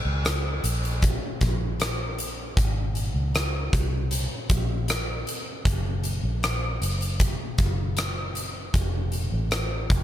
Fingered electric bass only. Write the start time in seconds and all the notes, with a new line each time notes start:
0.05 C#2
0.64 A#1
1.41 A#1
2.57 G#1
3.15 C#2
3.73 C2
4.50 A#1
5.66 F#1
6.23 A#1
6.82 F#1
7.59 F#1
8.74 F1
9.32 A1
9.90 F1